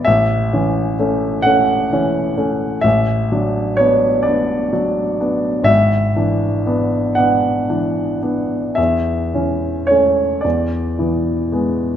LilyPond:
<<
  \new Staff \with { instrumentName = "Grand piano" } { \time 12/8 \key a \major \tempo 4. = 42 e''4. fis''4. e''4 cis''8 d''4. | e''4. fis''4. e''4 cis''8 d''4. | }
  \new Staff \with { instrumentName = "Grand piano" } { \time 12/8 \key a \major a,,8 <e cis'>8 <a cis'>8 <a cis'>8 <e cis'>8 <a cis'>8 a,,8 <fis d'>8 <b d'>8 <b d'>8 <fis d'>8 <b d'>8 | gis,,8 <e d'>8 <b d'>8 <b d'>8 <e d'>8 <b d'>8 e,8 <e cis'>8 <a cis'>8 e,8 <e b>8 <gis b>8 | }
>>